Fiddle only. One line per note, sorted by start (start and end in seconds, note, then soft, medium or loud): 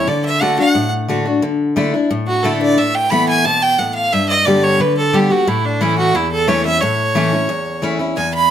0.08 0.25 D5 medium
0.25 0.43 E5 loud
0.41 0.58 F#5 medium
0.59 0.90 F#5 loud
2.27 2.45 F#4 medium
2.43 2.61 A4 medium
2.62 2.79 D5 medium
2.77 2.96 E5 medium
2.95 3.12 G5 loud
3.10 3.28 B5 loud
3.29 3.47 G#5 medium
3.45 3.64 A5 loud
3.63 3.80 G5 loud
3.79 3.94 F#5 medium
3.95 4.14 F5 medium
4.12 4.28 E5 medium
4.29 4.47 D#5 loud
4.46 4.66 D5 medium
4.64 4.82 C#5 loud
4.80 4.97 B4 medium
4.97 5.17 A4 loud
5.15 5.33 G4 medium
5.31 5.50 F#4 medium
5.48 5.67 E4 medium
5.65 5.83 D4 medium
5.81 5.97 E4 medium
5.98 6.17 F#4 medium
6.15 6.31 E4 medium
6.32 6.50 A4 medium
6.48 6.65 C#5 medium
6.66 6.83 E5 loud
6.81 7.83 C#5 medium
8.16 8.32 G#5 medium
8.34 8.51 B5 loud